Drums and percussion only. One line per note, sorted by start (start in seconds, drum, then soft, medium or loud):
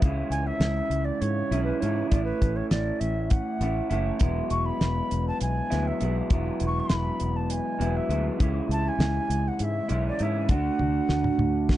0.02 kick loud
0.02 closed hi-hat medium
0.32 closed hi-hat medium
0.61 snare medium
0.61 closed hi-hat medium
0.91 closed hi-hat medium
1.22 closed hi-hat medium
1.52 closed hi-hat medium
1.82 closed hi-hat soft
2.12 kick loud
2.12 closed hi-hat medium
2.42 kick medium
2.42 closed hi-hat medium
2.71 snare medium
2.71 closed hi-hat medium
3.01 closed hi-hat medium
3.30 kick loud
3.30 closed hi-hat medium
3.61 closed hi-hat medium
3.91 closed hi-hat medium
4.20 kick loud
4.20 closed hi-hat medium
4.50 closed hi-hat medium
4.81 snare medium
4.81 closed hi-hat medium
5.11 closed hi-hat medium
5.41 closed hi-hat medium
5.71 snare soft
5.71 closed hi-hat medium
6.00 closed hi-hat medium
6.30 kick loud
6.30 closed hi-hat medium
6.60 closed hi-hat medium
6.89 snare medium
6.89 closed hi-hat medium
7.20 closed hi-hat medium
7.50 closed hi-hat medium
7.81 closed hi-hat medium
8.10 closed hi-hat medium
8.40 kick loud
8.40 closed hi-hat medium
8.71 closed hi-hat medium
9.00 snare medium
9.00 closed hi-hat medium
9.30 closed hi-hat medium
9.59 closed hi-hat medium
9.89 closed hi-hat medium
10.19 closed hi-hat soft
10.49 kick loud
10.49 closed hi-hat medium
10.79 high tom medium
11.09 snare soft
11.24 mid tom medium
11.39 mid tom medium
11.69 kick medium
11.69 snare medium